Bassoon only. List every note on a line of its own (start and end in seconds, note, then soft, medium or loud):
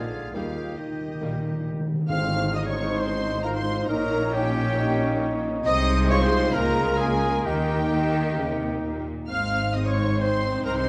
0.00 0.36 D3 soft
0.34 0.78 D#3 soft
0.79 1.86 D#3 soft
2.09 2.52 C4 medium
2.56 3.46 D#4 medium
3.44 3.89 F4 medium
3.90 4.33 D#4 medium
4.35 4.81 C#4 medium
4.79 6.12 D#4 loud
6.11 7.47 F4 loud
7.46 9.07 D#4 medium
10.19 10.89 C4 medium